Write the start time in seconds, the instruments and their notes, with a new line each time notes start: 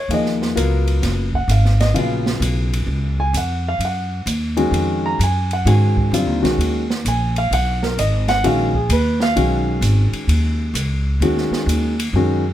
Already playing: grand piano C#5
0.08 upright bass D#2, grand piano F3 A#3 D#4 G#4, ride
0.14 grand piano D#5
0.26 snare
0.42 snare
0.55 upright bass C#2, grand piano F#3 B3 F4 A#4, hi-hat pedal, ride
0.87 ride
1.02 upright bass F#1, snare, ride
1.33 grand piano F#5, kick
1.48 upright bass G#1, grand piano F5, hi-hat pedal, ride
1.65 snare
1.80 grand piano D#5, snare, ride
1.94 upright bass A#1, grand piano C#3 F#3 B3 F4 F5, ride
2.26 snare
2.40 upright bass B1, hi-hat pedal, ride
2.73 ride
2.87 upright bass C#2
3.20 grand piano G#5
3.33 upright bass F2, hi-hat pedal, ride
3.37 grand piano F#5
3.68 grand piano F5
3.79 upright bass F#2, ride
3.85 grand piano F#5
4.26 upright bass D#2, hi-hat pedal, ride
4.57 grand piano D#3 G#3 C#4 F#4, ride
4.71 upright bass F2, ride
5.06 grand piano A#5
5.19 upright bass F#2, hi-hat pedal, ride
5.24 grand piano G#5
5.51 grand piano F#5, ride
5.65 upright bass G#2, grand piano D#3 G#3 C#4 F#4 G#5, ride
5.97 kick
6.11 upright bass F#2, grand piano D3 G3 C4 F4, hi-hat pedal, ride
6.27 upright bass D#2
6.42 upright bass B1, grand piano D#3 G#3 C#4 F#4, snare, ride
6.58 upright bass D#2, ride
6.90 snare
7.05 upright bass A#1, grand piano G#5, hi-hat pedal, ride
7.36 grand piano F5, ride
7.51 upright bass B1, grand piano F#5, ride
7.83 grand piano A#4, snare
7.97 upright bass G#1, grand piano D#5, hi-hat pedal, ride
8.28 grand piano F#5, snare, ride
8.44 upright bass A#1, grand piano D#3 G#3 C#4 F#4 F5, ride
8.75 grand piano G#4, kick
8.89 upright bass D#2, grand piano B4, hi-hat pedal, ride
9.20 grand piano F5, snare
9.36 upright bass B1, grand piano D#3 G#3 C#4 F#4, ride
9.81 upright bass G#1, hi-hat pedal, ride
10.12 muted upright bass stroke, ride
10.27 upright bass D#2, ride
10.74 upright bass C#2, hi-hat pedal, ride
11.20 upright bass D#2, grand piano D#3 G#3 C#4 F#4, ride
11.38 snare
11.51 muted upright bass stroke, snare
11.66 upright bass D#2, hi-hat pedal, ride
12.00 ride
12.13 upright bass F#2, grand piano D#3 G#3 C#4 F#4